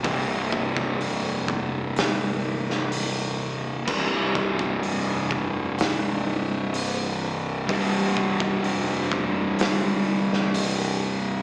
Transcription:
<<
  \new Staff \with { instrumentName = "Distorted electric guitar" } { \clef bass \time 4/4 \key c \minor \tempo 4 = 63 <c, g, c>1 | <c, g, c>1 | <c, g, c>1 | }
  \new Staff \with { instrumentName = "Fingered electric bass" } { \clef bass \time 4/4 \key c \minor c,,4 f,,4 g,,4 ees,,4 | c,,4 f,,4 ees,,4 c,,4 | c,,4 f,,4 g,,4 ees,,4 | }
  \new DrumStaff \with { instrumentName = "Drums" } \drummode { \time 4/4 <hho bd>8 bd16 bd16 hho8 bd8 <hho sn>8. sn16 hho4 | <cymc bd>8 bd16 bd16 hho8 bd8 <hho sn>4 hho4 | <hho bd>8 bd16 bd16 hho8 bd8 <hho sn>8. sn16 hho4 | }
>>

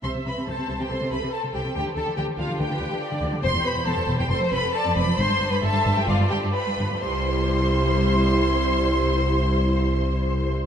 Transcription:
<<
  \new Staff \with { instrumentName = "Violin section" } { \time 4/4 \key c \major \tempo 4 = 136 c'''8 b''8 a''8. g''16 c'''8 b''8 a''8 g''8 | g''8 a''8 g''8 f''8 g''4. r8 | c'''8 b''8 a''8. g''16 c'''8 b''8 a''8 b''8 | c'''8. b''16 a''8. g''16 f''8 g''8 b''4 |
c'''1~ | c'''1 | }
  \new Staff \with { instrumentName = "Viola section" } { \time 4/4 \key c \major e''4 c''4 a'2 | g'2 b'4 d''4 | c''2 a'4 d''4 | c''4 e''4 d''4 b'8 r8 |
<g e'>1~ | <g e'>1 | }
  \new Staff \with { instrumentName = "Violin section" } { \time 4/4 \key c \major c''8 b'8 a'8. g'16 c''8 b'8 a'8 g'8 | g'8 a'8 g'8 f'8 g'4. r8 | c''8 b'8 a'8. g'16 c''8 b'8 a'8 b'8 | c''8. b'16 a'8. g'16 f'8 g'8 b'4 |
c''1~ | c''1 | }
  \new Staff \with { instrumentName = "Cello section" } { \clef bass \time 4/4 \key c \major c16 c16 c16 c16 c16 c16 c16 c16 c16 c16 c16 c16 r16 c16 c16 c16 | d16 d16 d16 d16 d16 d16 d16 d16 d16 d16 d16 d16 r16 d16 d16 d16 | e,16 e,16 e,16 e,16 e,16 e,16 e,16 e,16 f,16 f,16 f,16 f,16 r16 f,16 f,16 f,16 | g,16 g,16 g,16 g,16 g,16 g,16 g,16 g,16 g,16 g,16 g,16 g,16 r16 g,16 g,16 g,16 |
c,1~ | c,1 | }
  \new Staff \with { instrumentName = "Double bass section" } { \clef bass \time 4/4 \key c \major c,16 r16 c,16 r16 c,16 r16 c,16 r16 c,16 r16 c,16 r8. c,16 r16 | d,16 r16 d,16 r16 d,16 r16 d,16 r16 d,16 r16 d,16 r8. d,16 r16 | e,,16 r16 e,,16 r16 e,,16 r16 e,,16 r16 f,,16 r16 f,,16 r8. f,,16 r16 | g,,16 r16 g,,16 r16 g,,16 r16 g,,16 r16 g,,16 r16 g,,16 r8. g,,16 r16 |
c,1~ | c,1 | }
>>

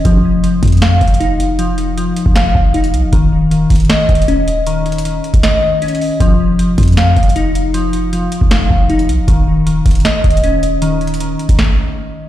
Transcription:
<<
  \new Staff \with { instrumentName = "Synth keys" } { \clef bass \time 4/4 \key des \lydian \tempo 4 = 156 f4 f4 f''4 ees'4 | f4 f4 f''4 ees'4 | ees4 ees4 ees''4 des'4 | ees4 ees4 ees''4 des'4 |
f4 f4 f''4 ees'4 | f4 f4 f''4 ees'4 | ees4 ees4 ees''4 des'4 | ees4 ees2. | }
  \new Staff \with { instrumentName = "808-style bass" } { \clef bass \time 4/4 \key des \lydian f,,4. f,4 f,,4.~ | f,,4. r16 f,,8. f,,4 c,16 f,,16 | ees,,4. ees,,8 r8 ees,,4.~ | ees,,4. r16 ees,,16 r2 |
f,,4. f,4 f,,4.~ | f,,4. r16 f,,8. f,,4 c,16 f,,16 | ees,,4. ees,,8 r8 ees,,4.~ | ees,,4. r16 ees,,16 r2 | }
  \new DrumStaff \with { instrumentName = "Drums" } \drummode { \time 4/4 <hh bd>4 hh8 <hh hho bd>32 hh32 hh32 hh32 \tuplet 3/2 { <hh sn>16 r16 r16 <hh bd>16 hh16 hh16 } hh8 hh8 | hh8 hh8 hh8 hh16 bd16 <hh sn>8 bd8 hh16 hh16 hh8 | <hh bd>4 hh8 <hh hho bd>32 hh32 hh32 hh32 \tuplet 3/2 { <hh sn>16 r16 r16 <hh bd>16 hh16 hh16 } hh8 hh8 | \tuplet 3/2 { hh16 r16 r16 hh16 hh16 hh16 } hh8 hh16 <hh bd>16 <hh sn>4 \tuplet 3/2 { hh16 hh16 hh16 hho16 r16 r16 } |
<hh bd>4 hh8 <hh hho bd>32 hh32 hh32 hh32 \tuplet 3/2 { <hh sn>16 r16 r16 <hh bd>16 hh16 hh16 } hh8 hh8 | hh8 hh8 hh8 hh16 bd16 <hh sn>8 bd8 hh16 hh16 hh8 | <hh bd>4 hh8 <hh hho bd>32 hh32 hh32 hh32 \tuplet 3/2 { <hh sn>16 r16 r16 <hh bd>16 hh16 hh16 } hh8 hh8 | \tuplet 3/2 { hh16 r16 r16 hh16 hh16 hh16 } hh8 hh16 <hh bd>16 <bd sn>4 r4 | }
>>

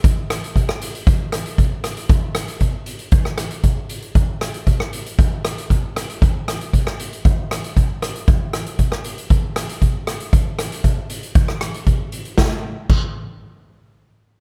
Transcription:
\new DrumStaff \with { instrumentName = "Drums" } \drummode { \time 4/4 \tempo 4 = 117 <hh bd>8 <hh ss>16 hh16 <hh bd>16 ss16 hh16 hh16 <hh bd>8 <hh ss>16 hh16 <hh bd>8 <hh ss>16 hh16 | <hh bd>8 <hh ss>16 hh16 <hh bd>8 hh16 hh16 <hh bd>16 ss16 <hh ss>16 hh16 <hh bd>8 hh16 hh16 | <hh bd>8 <hh ss>16 hh16 <hh bd>16 ss16 hh16 hh16 <hh bd>8 <hh ss>16 hh16 <hh bd>8 <hh ss>16 hh16 | <hh bd>8 <hh ss>16 hh16 <hh bd>16 ss16 hh16 hh16 <hh bd>8 <hh ss>16 hh16 <hh bd>8 <hh ss>16 hh16 |
<hh bd>8 <hh ss>16 hh16 <hh bd>16 ss16 hh16 hh16 <hh bd>8 <hh ss>16 hh16 <hh bd>8 <hh ss>16 hh16 | <hh bd>8 <hh ss>16 hh16 <hh bd>8 hh16 hh16 <hh bd>16 ss16 <hh ss>16 hh16 <hh bd>8 hh16 hh16 | <bd sn>4 <cymc bd>4 r4 r4 | }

